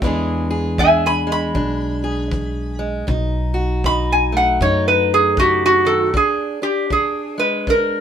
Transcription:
0.02 1.51 E2 loud
0.02 0.73 E2 medium
0.02 0.78 E3 medium
0.02 1.26 G#3 medium
0.02 0.79 D4 medium
0.02 kick medium
0.06 0.49 G#4 medium
0.51 2.03 G#4 medium
0.78 1.50 E3 medium
0.78 1.54 D4 medium
0.78 1.04 E5 medium
0.78 1.04 G#5 medium
0.78 kick medium
1.06 1.29 G#5 medium
1.06 1.30 B5 medium
1.27 2.78 G#3 medium
1.32 2.80 B5 medium
1.55 3.04 B1 medium
1.55 2.26 B2 medium
1.55 3.05 D4 medium
1.55 kick medium
2.04 3.05 G#4 medium
2.31 3.02 E3 medium
2.31 kick medium
2.79 3.05 G#3 medium
3.07 4.57 B1 loud
3.07 3.78 B2 medium
3.07 3.84 D#4 medium
3.07 kick medium
3.54 5.08 F#4 medium
3.84 4.55 D#3 medium
3.84 4.61 D#4 medium
3.84 4.10 B5 loud
3.84 kick medium
4.12 4.36 G#5 medium
4.32 6.11 A3 medium
4.37 4.61 F#5 medium
4.60 6.10 F#2 medium
4.60 5.32 F#2 medium
4.60 6.11 D#4 medium
4.60 4.86 C#5 loud
4.60 kick medium
4.88 5.12 B4 medium
5.14 5.38 G#4 medium
5.37 5.85 C#3 medium
5.37 5.64 F#4 medium
5.37 5.86 G4 medium
5.37 kick medium
5.66 6.14 F#4 loud
5.85 6.15 D#3 medium
5.85 6.13 A4 medium
6.14 6.85 E2 medium
6.14 6.61 D4 medium
6.14 6.63 G#4 medium
6.14 kick medium
6.62 6.90 D4 medium
6.62 6.90 G4 medium
6.90 7.62 E3 medium
6.90 7.67 D4 medium
6.90 7.36 G#4 medium
6.90 kick medium
7.38 8.01 G#3 medium
7.38 7.69 B4 medium
7.67 8.01 B2 medium
7.67 8.01 D4 medium
7.67 8.01 A#4 medium
7.67 kick medium

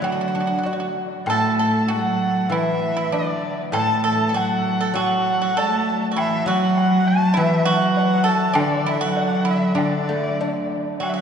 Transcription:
0.00 0.64 D3 medium
0.00 0.91 F#3 medium
0.00 1.89 F#3 medium
0.00 0.10 F#4 medium
0.00 0.95 F#5 medium
0.00 high woodblock soft
0.12 0.19 F#4 soft
0.21 0.27 F#4 medium
0.28 0.34 F#4 soft
0.35 1.59 D4 soft
0.35 0.39 F#4 soft
0.40 0.46 F#4 soft
0.47 0.55 F#4 soft
0.59 0.62 F#4 soft
0.63 0.70 F#4 soft
0.63 1.90 F#4 soft
0.63 low woodblock soft
0.73 0.79 F#4 soft
0.80 0.86 F#4 soft
1.25 3.12 A2 medium
1.25 1.89 A3 medium
1.25 1.57 A5 loud
1.25 high woodblock medium
1.30 1.58 A4 medium
1.59 1.88 A4 medium
1.59 1.92 A5 medium
1.87 2.50 F#3 medium
1.87 2.47 F#4 medium
1.87 2.53 F#5 loud
1.87 high woodblock soft
2.49 3.12 E3 medium
2.49 4.34 E3 medium
2.49 2.95 E4 medium
2.49 3.15 E5 loud
2.49 high woodblock soft
2.97 3.11 E4 medium
3.11 3.58 D3 medium
3.11 3.55 D4 medium
3.11 3.59 D5 medium
3.11 low woodblock soft
3.72 5.55 A2 medium
3.72 4.35 A3 medium
3.72 4.02 A4 medium
3.72 4.03 A5 loud
3.72 high woodblock medium
4.04 4.26 A4 medium
4.04 4.39 A5 loud
4.29 4.34 A4 medium
4.33 4.94 F#3 medium
4.33 4.77 F#4 medium
4.33 4.97 F#5 loud
4.33 high woodblock soft
4.81 4.95 A4 medium
4.94 6.45 F#3 medium
4.94 5.56 F#3 medium
4.94 5.38 F#4 medium
4.94 high woodblock soft
4.98 5.59 F#5 loud
5.42 5.56 F#4 medium
5.54 6.01 A3 medium
5.54 5.99 A4 medium
5.54 6.02 A5 loud
5.54 low woodblock medium
6.11 6.17 F#4 medium
6.16 6.47 E3 medium
6.16 6.44 E4 medium
6.16 6.47 E5 loud
6.16 high woodblock medium
6.45 7.38 F#3 loud
6.45 8.25 F#3 medium
6.45 7.33 F#4 medium
6.45 7.09 F#5 loud
6.77 high woodblock medium
7.07 7.40 A5 loud
7.34 7.67 E3 medium
7.34 9.16 E3 medium
7.34 7.62 E4 medium
7.34 high woodblock medium
7.38 7.69 E5 loud
7.65 8.55 F#3 loud
7.65 8.21 F#4 loud
7.65 8.31 F#5 loud
7.97 low woodblock soft
8.24 8.53 A4 medium
8.29 8.61 A5 loud
8.53 8.85 D3 medium
8.53 9.73 D3 medium
8.53 8.83 D4 medium
8.53 high woodblock medium
8.60 8.90 D5 medium
8.84 9.02 E3 medium
8.84 9.00 E4 medium
8.89 9.07 E5 medium
9.01 9.78 F#3 medium
9.01 9.43 F#4 medium
9.05 9.51 F#5 loud
9.17 low woodblock soft
9.45 9.74 E4 medium
9.50 9.80 E5 medium
9.75 11.21 D3 medium
9.75 10.71 D3 medium
9.75 10.66 D4 medium
9.75 high woodblock medium
9.79 10.72 D5 medium
10.09 11.21 A3 medium
10.41 11.21 D4 medium
10.41 low woodblock soft
11.00 11.21 F#3 medium
11.00 11.12 F#4 medium
11.00 11.11 F#5 medium
11.00 high woodblock medium
11.09 11.19 E5 medium
11.14 11.21 F#4 medium
11.18 11.21 F#5 medium

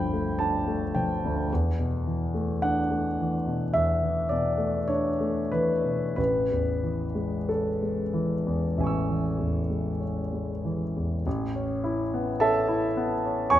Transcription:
0.00 1.46 G1 soft
0.00 1.25 D2 soft
0.00 0.29 F3 soft
0.00 0.39 G5 medium
0.00 1.52 B5 medium
0.13 0.56 A3 soft
0.39 0.84 D4 soft
0.39 0.94 A5 medium
0.68 1.11 A3 soft
0.95 1.39 F3 soft
0.95 1.50 G5 medium
1.25 1.51 D2 soft
1.52 3.70 E2 soft
1.79 2.23 B2 soft
2.07 2.52 E3 soft
2.34 2.79 A3 soft
2.62 3.07 D4 soft
2.62 3.73 F#5 medium
2.91 3.35 A3 soft
3.20 3.63 E3 soft
3.47 3.91 B2 soft
3.73 6.14 E2 soft
3.73 4.30 E5 medium
4.03 4.48 E3 soft
4.29 4.78 B2 soft
4.29 4.89 D5 medium
4.58 5.07 A3 soft
4.88 5.39 D4 soft
4.88 5.51 C#5 medium
5.21 5.71 A3 soft
5.52 6.04 E3 soft
5.52 6.15 B4 medium
5.84 6.18 B2 soft
6.16 8.74 A1 soft
6.16 7.49 B4 medium
6.51 7.04 E2 soft
6.84 7.36 E3 soft
7.15 7.68 G#3 soft
7.49 8.01 C#4 soft
7.49 10.02 A4 soft
7.82 8.33 G#3 soft
8.13 8.65 E3 soft
8.46 8.97 E2 soft
8.78 11.22 A1 soft
8.78 11.22 E5 soft
8.78 11.23 G#5 soft
8.84 11.25 C#6 soft
8.84 11.26 E6 soft
9.09 9.59 E3 soft
9.38 9.89 E2 soft
9.70 10.20 G#3 soft
10.00 10.51 C#4 soft
10.33 10.84 G#3 soft
10.65 11.14 E3 soft
10.96 11.26 E2 soft
11.27 13.48 A1 soft
11.55 12.02 C#4 soft
11.84 12.30 E4 soft
12.14 12.59 B3 soft
12.40 12.86 C#4 soft
12.40 13.47 A4 soft
12.40 13.47 E5 soft
12.40 13.51 A5 medium
12.68 13.13 E4 soft
12.97 13.41 B3 soft
13.25 13.60 C#4 soft
13.50 13.60 E2 soft
13.50 13.60 C#5 medium
13.50 13.60 G#5 soft
13.50 13.60 C#6 medium

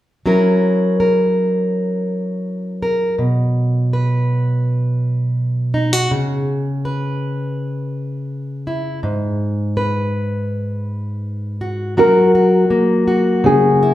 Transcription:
0.26 6.11 F#3 soft
0.26 3.15 C#4 soft
0.26 3.15 E4 soft
0.26 0.99 A#4 soft
1.00 2.81 A#4 soft
2.83 3.15 A#4 soft
3.18 6.07 B2 soft
3.93 6.14 B4 soft
5.74 5.93 D#4 soft
5.93 6.11 F#4 soft
6.11 9.04 C#3 medium
6.85 9.00 B4 soft
8.67 8.99 E4 soft
9.03 11.98 G#2 medium
9.77 11.94 B4 soft
11.61 11.94 F#4 soft
11.97 13.94 F#3 medium
11.97 12.34 F#4 soft
11.97 13.46 A#4 medium
12.35 13.07 F#4 soft
12.70 13.94 A#3 soft
13.08 13.94 F#4 soft
13.44 13.94 C#3 soft
13.44 13.94 G#4 medium
13.83 13.94 E4 soft

